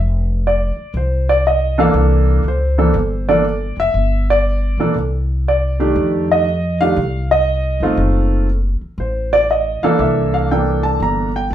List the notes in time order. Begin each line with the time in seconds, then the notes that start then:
Already playing: F1
0.47 D5
0.77 muted upright bass stroke
0.94 C2 C5
1.29 D5
1.47 D#5
1.78 E3 A#3 D4 A4 F5
1.94 C2
2.44 C#2
2.48 C5
2.78 E3 A#3 D4 A4
2.94 G1
3.29 E3 A#3 D4 A4 D5
3.77 F1 E5
3.94 G1
4.30 D5
4.77 B1 E3 A#3 D4 A4
4.94 C2
5.48 D5
5.80 D#3 A3 D4 G4
5.95 F2
6.32 D#5
6.81 D#3 A3 D4 G4 F5
6.96 C2
7.31 D#5
7.80 G1 D#3 A3 C4 F4
7.97 F#1
8.81 muted upright bass stroke
8.98 A1 C5
9.33 D5
9.51 D#5
9.82 E3 A#3 D4 A4 F5, muted upright bass stroke
9.99 C2 E5
10.34 F5
10.51 E3 A#3 D4 A4 G5
10.83 A5
11.00 G1 A#5
11.36 G5
11.50 B1